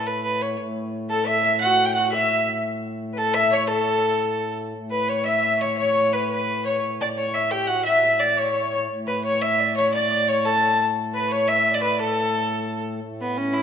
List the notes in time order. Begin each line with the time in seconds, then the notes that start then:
Already playing: A2
0.07 B4
0.23 B4
0.42 C#5
0.57 A2
1.09 A4
1.26 E5
1.45 E5
1.60 F#4 F#5
1.85 G5
1.94 F#4 F#5
2.12 E5
3.13 A4 B4
3.18 A4
3.34 E5
3.52 C#5
3.68 A4
4.75 A2
4.90 B4
5.09 C#5
5.25 E5
5.60 C#5
5.78 C#5
5.95 C#5
6.13 B4
6.31 B4
6.65 C#5
7.01 D5
7.17 C#5
7.34 E5
7.51 G4 G5
7.67 F#4 F#5
7.85 E5
8.03 E5
8.19 D5
8.38 C#5
8.44 D5
8.51 C#5
8.89 A2
9.07 B4
9.24 C#5
9.42 E5
9.59 D5
9.77 C#5
9.93 D5
10.10 D5
10.28 C#5
10.45 A4 A5
11.14 B4
11.30 C#5
11.48 E5
11.73 D5
11.82 B4
12.00 A4
13.02 A2
13.21 B3
13.37 C#4
13.53 E4